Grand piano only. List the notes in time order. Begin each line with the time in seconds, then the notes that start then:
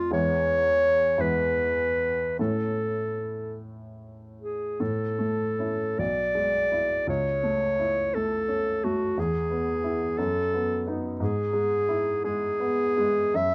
Already playing: F2 A3 F4 A4
0.11 E2 G#3 B3 E4
1.18 E2 G#3 B3 E4
2.39 A2 A3 C#4 E4
4.80 A2
5.19 A3
5.59 C#4 E4
5.99 B1
6.35 G#3
6.72 E4
7.07 C#2
7.43 A3
7.79 E4
8.15 A3
8.48 C#4
8.84 A3
9.17 E2
9.51 B3
9.84 B3 E4
10.19 F#2
10.54 B3
10.87 B3 D#4
11.20 G#2
11.53 G#3
11.89 E4
12.24 G#3
12.60 B3
12.97 G#3
13.34 F#2